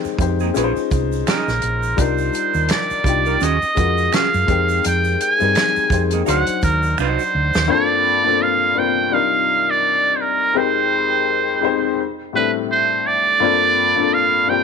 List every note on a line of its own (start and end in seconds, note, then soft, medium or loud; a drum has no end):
0.00 0.17 G#3 medium
0.00 0.19 C4 medium
0.00 0.20 D#4 medium
0.00 0.20 G4 medium
0.00 0.58 A#4 medium
0.00 0.15 C5 medium
0.04 muted fingered electric bass stroke soft
0.04 shaker soft
0.17 0.49 F2 medium
0.17 0.52 G#3 medium
0.17 0.55 C4 medium
0.17 0.54 D#4 medium
0.17 0.56 G4 medium
0.17 kick medium
0.17 closed hi-hat medium
0.17 shaker soft
0.21 0.56 C5 medium
0.40 0.50 A#3 soft
0.40 0.50 D#4 medium
0.40 0.50 G#4 medium
0.40 shaker soft
0.54 0.73 A#1 medium
0.54 1.80 G#3 medium
0.54 1.81 C#4 medium
0.54 0.71 C#4 medium
0.54 1.81 D#4 medium
0.54 0.72 D#4 medium
0.54 1.82 F4 medium
0.54 0.64 B4 medium
0.54 closed hi-hat medium
0.54 shaker medium
0.58 0.72 G#4 medium
0.64 1.85 C5 loud
0.76 shaker soft
0.91 1.22 C2 medium
0.91 kick medium
0.91 closed hi-hat medium
0.91 shaker soft
1.12 shaker soft
1.27 1.49 C#4 medium
1.27 1.50 D#4 medium
1.27 1.50 G#4 medium
1.27 2.02 A#4 medium
1.27 finger snap medium
1.27 snare loud
1.27 closed hi-hat medium
1.27 shaker medium
1.48 1.61 A#1 medium
1.48 snare soft
1.48 shaker medium
1.62 1.93 A#1 medium
1.62 closed hi-hat medium
1.83 shaker soft
1.97 2.29 C2 loud
1.97 2.92 G3 medium
1.97 2.93 D4 medium
1.97 2.93 D#4 medium
1.97 2.94 F4 medium
1.97 2.73 C5 medium
1.97 kick loud
1.97 closed hi-hat medium
1.97 shaker medium
2.01 2.94 A#4 loud
2.18 shaker soft
2.33 closed hi-hat medium
2.33 shaker soft
2.54 2.68 D#2 medium
2.54 shaker soft
2.69 3.45 D5 medium
2.69 finger snap medium
2.69 snare loud
2.69 closed hi-hat medium
2.69 shaker medium
2.90 muted fingered electric bass stroke soft
2.90 shaker soft
3.04 3.35 C2 medium
3.04 3.40 G3 medium
3.04 3.41 D4 medium
3.04 3.41 D#4 medium
3.04 3.42 F4 medium
3.04 kick medium
3.04 closed hi-hat medium
3.04 shaker soft
3.08 3.42 G4 medium
3.26 3.36 D#4 medium
3.26 3.36 F4 medium
3.26 3.35 A#4 medium
3.26 shaker soft
3.41 3.59 D#2 medium
3.41 3.57 C#4 medium
3.41 3.57 F#4 medium
3.41 3.58 G#4 medium
3.41 4.16 D#5 medium
3.41 closed hi-hat medium
3.41 shaker medium
3.62 muted fingered electric bass stroke soft
3.62 shaker soft
3.75 4.08 F2 medium
3.75 4.45 G#3 medium
3.75 4.48 C#4 medium
3.75 4.48 F4 medium
3.75 4.49 F#4 medium
3.75 4.49 A#4 medium
3.75 kick medium
3.75 closed hi-hat medium
3.75 shaker soft
3.98 shaker soft
4.13 4.29 C#4 medium
4.13 4.29 F#4 medium
4.13 4.29 G#4 medium
4.13 4.85 F5 loud
4.13 finger snap medium
4.13 snare loud
4.13 closed hi-hat medium
4.13 shaker medium
4.34 4.47 F#2 medium
4.34 shaker soft
4.47 4.79 F2 medium
4.47 5.25 G#3 medium
4.47 5.26 C4 medium
4.47 5.26 D#4 medium
4.47 5.27 G4 medium
4.47 5.27 A#4 medium
4.47 kick medium
4.47 closed hi-hat medium
4.69 shaker soft
4.84 5.15 F2 loud
4.84 5.22 G5 loud
4.84 closed hi-hat medium
4.84 shaker medium
5.04 shaker medium
5.20 5.33 G5 loud
5.20 closed hi-hat medium
5.33 6.02 G#5 loud
5.39 5.54 G2 medium
5.39 5.86 G3 medium
5.39 5.84 G#3 medium
5.39 5.84 C4 medium
5.39 5.85 D#4 medium
5.39 5.86 A#4 medium
5.39 shaker soft
5.55 finger snap medium
5.55 snare loud
5.55 closed hi-hat medium
5.55 shaker medium
5.76 muted fingered electric bass stroke soft
5.76 shaker soft
5.89 6.21 F2 medium
5.89 6.26 G#3 medium
5.89 6.26 C4 medium
5.89 6.25 D#4 medium
5.89 6.27 G4 medium
5.89 kick medium
5.89 closed hi-hat medium
5.89 shaker soft
5.93 6.28 C5 medium
6.11 6.22 A#3 medium
6.11 6.22 D#4 medium
6.11 6.21 G#4 medium
6.11 closed hi-hat medium
6.11 shaker soft
6.25 6.45 D2 loud
6.25 7.52 F#3 medium
6.25 7.52 D4 medium
6.25 6.42 D#4 medium
6.25 7.53 D#4 medium
6.25 6.43 F#4 medium
6.25 7.53 F#4 medium
6.25 6.43 C5 medium
6.25 closed hi-hat medium
6.25 shaker medium
6.29 7.54 C5 medium
6.29 6.61 F#5 medium
6.47 muted fingered electric bass stroke soft
6.47 closed hi-hat soft
6.47 shaker soft
6.62 6.93 D#2 loud
6.62 7.01 A#4 medium
6.62 kick medium
6.62 closed hi-hat medium
6.62 shaker soft
6.83 shaker soft
6.98 7.16 C2 loud
6.98 7.21 D#4 medium
6.98 7.21 F#4 medium
6.98 7.72 C5 medium
6.98 7.22 C5 medium
6.98 finger snap medium
6.98 shaker medium
7.19 shaker soft
7.35 7.52 D2 medium
7.54 7.68 D#2 medium
7.54 snare medium
7.54 shaker medium
7.68 8.16 G2 loud
7.68 8.17 A#3 medium
7.68 8.17 C4 medium
7.68 8.18 D4 medium
7.68 8.18 F4 medium
7.68 8.44 D5 loud
7.72 8.18 A4 loud
8.24 8.70 G2 medium
8.24 8.70 A#3 medium
8.24 8.70 C4 medium
8.24 8.71 D4 medium
8.24 8.71 F4 medium
8.24 8.72 A4 medium
8.42 8.80 F5 loud
8.75 9.12 G2 medium
8.75 9.12 A#3 medium
8.75 9.12 C4 medium
8.75 9.11 D4 medium
8.75 9.13 F4 medium
8.75 9.13 A#4 medium
8.75 9.15 G5 loud
9.11 10.37 C3 medium
9.11 10.38 G3 medium
9.11 10.38 D4 medium
9.11 10.38 D#4 medium
9.11 10.39 F4 medium
9.11 9.72 F5 loud
9.15 10.39 A#4 medium
9.70 10.17 D5 loud
10.16 10.23 C5 medium
10.21 10.59 A#4 loud
10.54 11.49 F2 loud
10.54 11.50 G#3 medium
10.54 11.50 C4 medium
10.54 11.50 D#4 medium
10.54 11.51 G4 medium
10.54 12.09 C5 loud
10.58 11.51 A#4 loud
11.61 11.97 F2 medium
11.61 11.98 G#3 medium
11.61 11.98 C4 medium
11.61 11.98 D#4 medium
11.61 11.99 G4 medium
11.65 11.99 C5 loud
12.33 13.28 A2 medium
12.33 13.29 G3 medium
12.33 13.29 C4 medium
12.33 13.29 D4 medium
12.33 13.30 E4 medium
12.33 12.51 B4 loud
12.37 13.30 A4 medium
12.71 13.08 C5 loud
13.07 14.15 D5 loud
13.40 13.88 G2 loud
13.40 13.89 A#3 medium
13.40 13.89 C4 medium
13.40 13.89 D4 medium
13.40 13.90 F4 medium
13.44 13.90 A4 loud
13.96 14.41 G2 medium
13.96 14.42 A#3 medium
13.96 14.42 C4 medium
13.96 14.43 D4 medium
13.96 14.43 F4 medium
14.00 14.43 A4 medium
14.14 14.51 F5 loud
14.47 14.63 G2 medium
14.47 14.63 A#3 medium
14.47 14.63 C4 medium
14.47 14.63 D4 medium
14.47 14.63 F4 medium
14.47 14.63 G5 loud
14.51 14.63 G4 medium